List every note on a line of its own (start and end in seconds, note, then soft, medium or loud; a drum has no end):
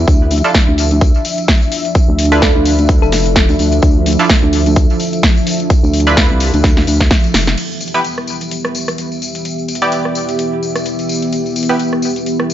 0.00 0.95 B3 medium
0.00 1.24 G4 medium
0.00 7.54 E5 medium
0.07 0.42 D2 loud
0.07 7.54 F3 medium
0.07 7.54 D4 medium
0.07 8.31 D4 medium
0.07 kick loud
0.07 closed hi-hat medium
0.07 tambourine medium
0.27 9.20 A4 medium
0.27 tambourine medium
0.31 open hi-hat loud
0.38 closed hi-hat medium
0.44 0.51 D4 medium
0.44 0.51 E4 medium
0.44 0.51 F4 medium
0.44 0.51 A4 medium
0.44 closed hi-hat soft
0.44 tambourine soft
0.52 7.58 F3 medium
0.52 kick loud
0.52 snare loud
0.52 closed hi-hat medium
0.52 tambourine soft
0.68 1.13 D2 loud
0.78 open hi-hat medium
0.78 tambourine medium
0.91 closed hi-hat soft
0.91 tambourine soft
1.01 kick loud
1.01 closed hi-hat medium
1.01 tambourine medium
1.14 12.54 E5 medium
1.14 tambourine soft
1.25 open hi-hat loud
1.25 tambourine medium
1.38 closed hi-hat soft
1.38 tambourine soft
1.48 kick loud
1.48 snare loud
1.48 closed hi-hat medium
1.48 tambourine soft
1.62 tambourine soft
1.72 open hi-hat medium
1.72 tambourine medium
1.85 closed hi-hat soft
1.85 tambourine soft
1.95 kick loud
1.95 closed hi-hat medium
1.95 tambourine medium
2.08 2.53 D2 loud
2.19 open hi-hat loud
2.19 tambourine medium
2.25 closed hi-hat medium
2.32 4.16 D4 medium
2.32 4.16 E4 medium
2.32 4.16 F4 medium
2.32 2.38 A4 loud
2.32 4.16 B4 medium
2.32 closed hi-hat medium
2.32 tambourine soft
2.42 2.50 A4 medium
2.42 kick loud
2.42 snare loud
2.42 closed hi-hat medium
2.42 tambourine medium
2.55 3.00 D2 loud
2.65 open hi-hat medium
2.65 tambourine medium
2.79 closed hi-hat medium
2.79 tambourine soft
2.89 kick loud
2.89 closed hi-hat medium
2.89 tambourine soft
3.02 3.47 F1 loud
3.02 3.67 A4 medium
3.02 tambourine soft
3.12 snare medium
3.12 open hi-hat loud
3.12 tambourine medium
3.26 closed hi-hat medium
3.26 tambourine soft
3.36 kick loud
3.36 snare loud
3.36 closed hi-hat medium
3.36 tambourine medium
3.49 3.58 D2 loud
3.49 closed hi-hat soft
3.49 tambourine soft
3.59 3.81 D2 loud
3.59 open hi-hat medium
3.59 tambourine medium
3.72 closed hi-hat medium
3.72 tambourine soft
3.82 4.17 D2 medium
3.82 kick loud
3.82 closed hi-hat medium
3.82 tambourine soft
4.06 open hi-hat loud
4.06 tambourine medium
4.13 closed hi-hat medium
4.19 4.26 D4 medium
4.19 4.26 E4 medium
4.19 4.26 F4 medium
4.19 4.26 A4 medium
4.19 closed hi-hat medium
4.19 tambourine soft
4.29 kick loud
4.29 snare loud
4.29 closed hi-hat medium
4.29 tambourine soft
4.43 4.88 D2 loud
4.53 open hi-hat medium
4.53 tambourine medium
4.66 closed hi-hat medium
4.66 tambourine soft
4.76 kick loud
4.76 closed hi-hat medium
4.76 tambourine medium
4.90 tambourine soft
4.99 open hi-hat loud
4.99 tambourine medium
5.13 closed hi-hat soft
5.13 tambourine soft
5.23 kick loud
5.23 snare loud
5.23 closed hi-hat medium
5.23 tambourine soft
5.36 tambourine soft
5.47 open hi-hat medium
5.47 tambourine medium
5.60 closed hi-hat medium
5.60 tambourine soft
5.70 kick loud
5.70 closed hi-hat medium
5.70 tambourine medium
5.83 6.28 D2 medium
5.83 tambourine soft
5.94 open hi-hat loud
5.94 tambourine medium
6.00 closed hi-hat medium
6.07 6.98 D4 medium
6.07 6.98 E4 medium
6.07 6.98 F4 medium
6.07 6.98 B4 medium
6.07 closed hi-hat medium
6.07 tambourine soft
6.17 kick loud
6.17 snare loud
6.17 closed hi-hat medium
6.17 tambourine medium
6.30 6.52 C2 loud
6.40 open hi-hat medium
6.40 tambourine medium
6.54 6.86 D2 medium
6.54 closed hi-hat medium
6.54 tambourine soft
6.64 kick loud
6.64 snare medium
6.64 closed hi-hat medium
6.64 tambourine soft
6.77 snare medium
6.77 tambourine soft
6.87 7.09 D2 loud
6.87 open hi-hat loud
6.87 tambourine medium
7.00 kick medium
7.00 snare medium
7.00 closed hi-hat medium
7.00 tambourine soft
7.11 kick loud
7.11 snare medium
7.11 closed hi-hat medium
7.11 tambourine soft
7.24 closed hi-hat soft
7.24 tambourine soft
7.34 7.56 F1 loud
7.34 snare loud
7.34 open hi-hat medium
7.34 tambourine medium
7.47 snare medium
7.47 closed hi-hat medium
7.47 tambourine soft
7.58 12.54 E3 medium
7.58 12.54 B3 medium
7.58 12.54 G4 medium
7.58 closed hi-hat medium
7.58 tambourine soft
7.58 crash medium
7.72 tambourine soft
7.77 12.54 E4 medium
7.77 closed hi-hat soft
7.77 tambourine medium
7.88 closed hi-hat medium
7.94 8.01 B3 medium
7.94 8.01 E4 medium
7.94 8.01 G4 medium
7.94 12.54 G4 medium
7.94 8.01 B4 medium
7.94 closed hi-hat soft
7.94 tambourine soft
8.04 closed hi-hat medium
8.04 tambourine medium
8.18 cross-stick medium
8.27 tambourine medium
8.41 closed hi-hat soft
8.41 tambourine soft
8.51 closed hi-hat medium
8.51 tambourine soft
8.65 cross-stick medium
8.75 tambourine medium
8.88 cross-stick medium
8.88 closed hi-hat soft
8.88 tambourine soft
8.98 closed hi-hat medium
8.98 tambourine soft
9.12 tambourine soft
9.22 tambourine medium
9.35 closed hi-hat medium
9.35 tambourine soft
9.45 closed hi-hat medium
9.45 tambourine medium
9.58 tambourine soft
9.68 closed hi-hat soft
9.68 tambourine medium
9.75 closed hi-hat medium
9.82 11.66 B3 medium
9.82 11.66 E4 medium
9.82 11.66 G4 medium
9.82 11.66 D5 medium
9.82 closed hi-hat soft
9.82 tambourine soft
9.92 closed hi-hat medium
9.92 tambourine soft
10.05 cross-stick medium
10.15 tambourine medium
10.29 closed hi-hat soft
10.29 tambourine soft
10.39 closed hi-hat medium
10.39 tambourine soft
10.63 tambourine medium
10.76 cross-stick medium
10.76 closed hi-hat soft
10.76 tambourine soft
10.85 closed hi-hat medium
10.85 tambourine soft
10.99 closed hi-hat soft
10.99 tambourine soft
11.09 tambourine medium
11.22 closed hi-hat soft
11.22 tambourine soft
11.32 closed hi-hat medium
11.32 tambourine medium
11.46 tambourine soft
11.56 closed hi-hat soft
11.56 tambourine medium
11.63 closed hi-hat medium
11.69 11.76 B3 medium
11.69 11.76 E4 medium
11.69 11.76 G4 medium
11.69 11.76 B4 medium
11.69 closed hi-hat soft
11.69 tambourine soft
11.79 closed hi-hat medium
11.79 tambourine soft
11.93 cross-stick medium
12.02 tambourine medium
12.16 closed hi-hat soft
12.16 tambourine soft
12.26 closed hi-hat medium
12.26 tambourine medium
12.40 cross-stick medium
12.50 tambourine medium